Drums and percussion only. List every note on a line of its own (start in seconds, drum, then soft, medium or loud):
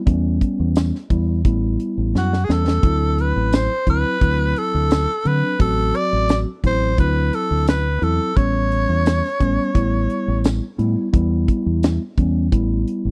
0.07 kick loud
0.07 closed hi-hat medium
0.41 kick medium
0.41 closed hi-hat medium
0.76 snare loud
0.76 closed hi-hat medium
0.76 tambourine loud
0.95 snare soft
1.10 kick medium
1.10 closed hi-hat medium
1.45 kick medium
1.45 closed hi-hat medium
1.80 closed hi-hat medium
2.15 snare medium
2.33 snare medium
2.50 snare medium
2.68 snare medium
2.83 kick loud
2.83 closed hi-hat medium
3.18 closed hi-hat medium
3.52 snare loud
3.52 closed hi-hat medium
3.52 tambourine loud
3.87 kick medium
3.87 closed hi-hat medium
4.21 kick medium
4.21 closed hi-hat medium
4.56 closed hi-hat medium
4.91 snare loud
4.91 closed hi-hat medium
4.91 tambourine loud
5.25 closed hi-hat medium
5.60 kick loud
5.60 closed hi-hat medium
5.94 closed hi-hat medium
6.29 snare loud
6.29 closed hi-hat medium
6.29 tambourine loud
6.64 kick medium
6.64 closed hi-hat medium
6.98 kick medium
6.98 closed hi-hat medium
7.33 closed hi-hat medium
7.67 snare loud
7.67 closed hi-hat medium
7.67 tambourine loud
8.02 closed hi-hat medium
8.37 kick loud
8.37 closed hi-hat medium
8.71 closed hi-hat medium
9.06 snare loud
9.06 closed hi-hat medium
9.06 tambourine loud
9.25 snare soft
9.40 kick medium
9.40 closed hi-hat medium
9.75 kick medium
9.75 closed hi-hat medium
10.10 closed hi-hat medium
10.44 snare loud
10.44 closed hi-hat medium
10.44 tambourine loud
10.79 closed hi-hat medium
11.14 kick loud
11.14 closed hi-hat medium
11.48 kick medium
11.48 closed hi-hat medium
11.83 snare loud
11.83 closed hi-hat medium
11.83 tambourine loud
12.18 kick medium
12.18 closed hi-hat medium
12.52 kick medium
12.52 closed hi-hat medium
12.87 closed hi-hat medium